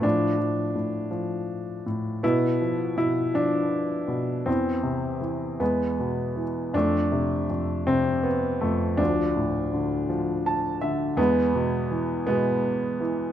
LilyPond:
<<
  \new Staff \with { instrumentName = "Grand piano" } { \time 6/8 \key d \dorian \tempo 4. = 54 << { r2. | r2. | r2. | r2. |
r2 a''8 e''8 | r2. | } \\ { d'2~ d'8 r8 | e'4 e'8 d'4. | c'4 r8 b4 r8 | d'4 r8 c'8 b8 a8 |
d'2~ d'8 r8 | b4. b4. | } >> }
  \new Staff \with { instrumentName = "Grand piano" } { \clef bass \time 6/8 \key d \dorian << { f2~ f8 r8 | b4. r4. | e4. gis4. | a4. r4. |
f2~ f8 r8 | gis4. gis4. | } \\ { a,8 f8 a,8 f4 a,8 | b,8 f8 b,8 f4 b,8 | e,8 c8 e8 e,8 b,8 e8 | f,8 c8 f,8 c4 f,8 |
d,8 a,8 d8 f4 d8 | e,8 b,8 e8 b,4 e8 | } >> }
>>